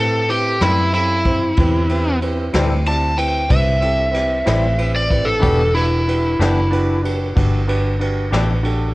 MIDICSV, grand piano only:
0, 0, Header, 1, 2, 480
1, 0, Start_track
1, 0, Tempo, 642398
1, 1178, Time_signature, 12, 3, 24, 8
1, 6681, End_track
2, 0, Start_track
2, 0, Title_t, "Grand piano"
2, 0, Program_c, 0, 0
2, 0, Note_on_c, 0, 60, 52
2, 0, Note_on_c, 0, 64, 52
2, 0, Note_on_c, 0, 67, 50
2, 0, Note_on_c, 0, 71, 56
2, 158, Note_off_c, 0, 60, 0
2, 161, Note_off_c, 0, 67, 0
2, 162, Note_off_c, 0, 64, 0
2, 166, Note_off_c, 0, 71, 0
2, 218, Note_on_c, 0, 60, 51
2, 220, Note_on_c, 0, 64, 45
2, 226, Note_on_c, 0, 67, 46
2, 229, Note_on_c, 0, 71, 49
2, 398, Note_off_c, 0, 60, 0
2, 399, Note_off_c, 0, 64, 0
2, 402, Note_off_c, 0, 67, 0
2, 403, Note_off_c, 0, 71, 0
2, 449, Note_on_c, 0, 60, 48
2, 452, Note_on_c, 0, 64, 49
2, 456, Note_on_c, 0, 67, 48
2, 461, Note_on_c, 0, 71, 57
2, 633, Note_off_c, 0, 60, 0
2, 634, Note_off_c, 0, 64, 0
2, 637, Note_off_c, 0, 67, 0
2, 639, Note_off_c, 0, 71, 0
2, 695, Note_on_c, 0, 60, 52
2, 699, Note_on_c, 0, 64, 50
2, 701, Note_on_c, 0, 67, 53
2, 711, Note_on_c, 0, 69, 62
2, 876, Note_off_c, 0, 60, 0
2, 878, Note_off_c, 0, 64, 0
2, 879, Note_off_c, 0, 67, 0
2, 884, Note_off_c, 0, 69, 0
2, 935, Note_on_c, 0, 60, 49
2, 936, Note_on_c, 0, 64, 47
2, 941, Note_on_c, 0, 67, 46
2, 948, Note_on_c, 0, 72, 53
2, 1116, Note_off_c, 0, 60, 0
2, 1117, Note_off_c, 0, 64, 0
2, 1119, Note_off_c, 0, 67, 0
2, 1123, Note_off_c, 0, 72, 0
2, 1182, Note_on_c, 0, 60, 66
2, 1188, Note_on_c, 0, 64, 59
2, 1192, Note_on_c, 0, 67, 63
2, 1192, Note_on_c, 0, 71, 69
2, 1360, Note_off_c, 0, 60, 0
2, 1363, Note_off_c, 0, 64, 0
2, 1365, Note_off_c, 0, 67, 0
2, 1365, Note_off_c, 0, 71, 0
2, 1411, Note_on_c, 0, 60, 67
2, 1424, Note_on_c, 0, 64, 56
2, 1424, Note_on_c, 0, 67, 60
2, 1430, Note_on_c, 0, 71, 64
2, 1594, Note_off_c, 0, 60, 0
2, 1601, Note_off_c, 0, 64, 0
2, 1601, Note_off_c, 0, 67, 0
2, 1604, Note_off_c, 0, 71, 0
2, 1659, Note_on_c, 0, 60, 64
2, 1662, Note_on_c, 0, 64, 58
2, 1666, Note_on_c, 0, 67, 55
2, 1671, Note_on_c, 0, 71, 64
2, 1838, Note_off_c, 0, 60, 0
2, 1840, Note_off_c, 0, 64, 0
2, 1842, Note_off_c, 0, 67, 0
2, 1844, Note_off_c, 0, 71, 0
2, 1887, Note_on_c, 0, 64, 53
2, 1891, Note_on_c, 0, 60, 59
2, 1895, Note_on_c, 0, 67, 55
2, 1899, Note_on_c, 0, 71, 66
2, 2073, Note_off_c, 0, 64, 0
2, 2074, Note_off_c, 0, 60, 0
2, 2076, Note_off_c, 0, 67, 0
2, 2078, Note_off_c, 0, 71, 0
2, 2135, Note_on_c, 0, 60, 52
2, 2141, Note_on_c, 0, 64, 54
2, 2148, Note_on_c, 0, 67, 59
2, 2153, Note_on_c, 0, 74, 66
2, 2317, Note_off_c, 0, 60, 0
2, 2320, Note_off_c, 0, 64, 0
2, 2323, Note_off_c, 0, 67, 0
2, 2326, Note_off_c, 0, 74, 0
2, 2370, Note_on_c, 0, 60, 54
2, 2372, Note_on_c, 0, 64, 47
2, 2376, Note_on_c, 0, 67, 41
2, 2378, Note_on_c, 0, 71, 57
2, 2554, Note_off_c, 0, 60, 0
2, 2555, Note_off_c, 0, 64, 0
2, 2557, Note_off_c, 0, 67, 0
2, 2558, Note_off_c, 0, 71, 0
2, 2608, Note_on_c, 0, 60, 58
2, 2612, Note_on_c, 0, 64, 46
2, 2621, Note_on_c, 0, 67, 44
2, 2622, Note_on_c, 0, 71, 59
2, 2793, Note_off_c, 0, 60, 0
2, 2795, Note_off_c, 0, 64, 0
2, 2799, Note_off_c, 0, 67, 0
2, 2800, Note_off_c, 0, 71, 0
2, 2847, Note_on_c, 0, 60, 55
2, 2853, Note_on_c, 0, 64, 48
2, 2857, Note_on_c, 0, 67, 52
2, 2863, Note_on_c, 0, 69, 60
2, 3033, Note_off_c, 0, 60, 0
2, 3036, Note_off_c, 0, 64, 0
2, 3038, Note_off_c, 0, 67, 0
2, 3040, Note_off_c, 0, 69, 0
2, 3072, Note_on_c, 0, 60, 56
2, 3083, Note_on_c, 0, 64, 41
2, 3087, Note_on_c, 0, 67, 51
2, 3087, Note_on_c, 0, 71, 48
2, 3265, Note_off_c, 0, 60, 0
2, 3270, Note_off_c, 0, 64, 0
2, 3272, Note_off_c, 0, 67, 0
2, 3272, Note_off_c, 0, 71, 0
2, 3323, Note_on_c, 0, 60, 59
2, 3325, Note_on_c, 0, 64, 54
2, 3330, Note_on_c, 0, 67, 59
2, 3337, Note_on_c, 0, 71, 66
2, 3510, Note_off_c, 0, 60, 0
2, 3512, Note_off_c, 0, 64, 0
2, 3514, Note_off_c, 0, 67, 0
2, 3518, Note_off_c, 0, 71, 0
2, 3571, Note_on_c, 0, 60, 52
2, 3576, Note_on_c, 0, 64, 51
2, 3580, Note_on_c, 0, 67, 49
2, 3582, Note_on_c, 0, 71, 58
2, 3755, Note_off_c, 0, 60, 0
2, 3757, Note_off_c, 0, 64, 0
2, 3759, Note_off_c, 0, 67, 0
2, 3760, Note_off_c, 0, 71, 0
2, 3809, Note_on_c, 0, 60, 53
2, 3819, Note_on_c, 0, 64, 49
2, 3825, Note_on_c, 0, 67, 53
2, 3825, Note_on_c, 0, 71, 60
2, 3994, Note_off_c, 0, 60, 0
2, 3999, Note_off_c, 0, 64, 0
2, 4001, Note_off_c, 0, 71, 0
2, 4002, Note_off_c, 0, 67, 0
2, 4035, Note_on_c, 0, 62, 67
2, 4042, Note_on_c, 0, 66, 59
2, 4049, Note_on_c, 0, 67, 65
2, 4053, Note_on_c, 0, 71, 70
2, 4227, Note_off_c, 0, 62, 0
2, 4230, Note_off_c, 0, 66, 0
2, 4234, Note_off_c, 0, 67, 0
2, 4236, Note_off_c, 0, 71, 0
2, 4288, Note_on_c, 0, 62, 55
2, 4295, Note_on_c, 0, 66, 46
2, 4297, Note_on_c, 0, 67, 49
2, 4307, Note_on_c, 0, 71, 59
2, 4473, Note_off_c, 0, 62, 0
2, 4477, Note_off_c, 0, 66, 0
2, 4478, Note_off_c, 0, 67, 0
2, 4483, Note_off_c, 0, 71, 0
2, 4533, Note_on_c, 0, 62, 51
2, 4538, Note_on_c, 0, 66, 46
2, 4540, Note_on_c, 0, 67, 47
2, 4548, Note_on_c, 0, 71, 60
2, 4716, Note_off_c, 0, 62, 0
2, 4718, Note_off_c, 0, 66, 0
2, 4719, Note_off_c, 0, 67, 0
2, 4723, Note_off_c, 0, 71, 0
2, 4775, Note_on_c, 0, 62, 45
2, 4781, Note_on_c, 0, 66, 46
2, 4787, Note_on_c, 0, 67, 46
2, 4793, Note_on_c, 0, 71, 57
2, 4957, Note_off_c, 0, 62, 0
2, 4960, Note_off_c, 0, 66, 0
2, 4963, Note_off_c, 0, 67, 0
2, 4966, Note_off_c, 0, 71, 0
2, 5010, Note_on_c, 0, 62, 78
2, 5018, Note_on_c, 0, 67, 67
2, 5020, Note_on_c, 0, 66, 59
2, 5025, Note_on_c, 0, 71, 81
2, 5195, Note_off_c, 0, 62, 0
2, 5198, Note_off_c, 0, 67, 0
2, 5199, Note_off_c, 0, 66, 0
2, 5202, Note_off_c, 0, 71, 0
2, 5249, Note_on_c, 0, 62, 62
2, 5253, Note_on_c, 0, 66, 50
2, 5258, Note_on_c, 0, 67, 51
2, 5261, Note_on_c, 0, 71, 68
2, 5434, Note_off_c, 0, 62, 0
2, 5436, Note_off_c, 0, 66, 0
2, 5438, Note_off_c, 0, 67, 0
2, 5440, Note_off_c, 0, 71, 0
2, 5493, Note_on_c, 0, 62, 63
2, 5493, Note_on_c, 0, 66, 62
2, 5500, Note_on_c, 0, 67, 60
2, 5506, Note_on_c, 0, 71, 61
2, 5676, Note_off_c, 0, 62, 0
2, 5676, Note_off_c, 0, 66, 0
2, 5679, Note_off_c, 0, 67, 0
2, 5682, Note_off_c, 0, 71, 0
2, 5732, Note_on_c, 0, 62, 70
2, 5732, Note_on_c, 0, 66, 58
2, 5737, Note_on_c, 0, 67, 64
2, 5740, Note_on_c, 0, 71, 73
2, 5916, Note_off_c, 0, 62, 0
2, 5916, Note_off_c, 0, 66, 0
2, 5918, Note_off_c, 0, 67, 0
2, 5919, Note_off_c, 0, 71, 0
2, 5971, Note_on_c, 0, 62, 57
2, 5975, Note_on_c, 0, 66, 55
2, 5982, Note_on_c, 0, 67, 57
2, 5987, Note_on_c, 0, 71, 62
2, 6155, Note_off_c, 0, 62, 0
2, 6157, Note_off_c, 0, 66, 0
2, 6161, Note_off_c, 0, 67, 0
2, 6163, Note_off_c, 0, 71, 0
2, 6206, Note_on_c, 0, 62, 58
2, 6212, Note_on_c, 0, 66, 50
2, 6215, Note_on_c, 0, 67, 50
2, 6221, Note_on_c, 0, 71, 74
2, 6393, Note_off_c, 0, 62, 0
2, 6396, Note_off_c, 0, 66, 0
2, 6397, Note_off_c, 0, 67, 0
2, 6400, Note_off_c, 0, 71, 0
2, 6447, Note_on_c, 0, 66, 65
2, 6449, Note_on_c, 0, 62, 69
2, 6456, Note_on_c, 0, 67, 65
2, 6461, Note_on_c, 0, 69, 71
2, 6633, Note_off_c, 0, 66, 0
2, 6634, Note_off_c, 0, 62, 0
2, 6638, Note_off_c, 0, 67, 0
2, 6640, Note_off_c, 0, 69, 0
2, 6681, End_track
0, 0, End_of_file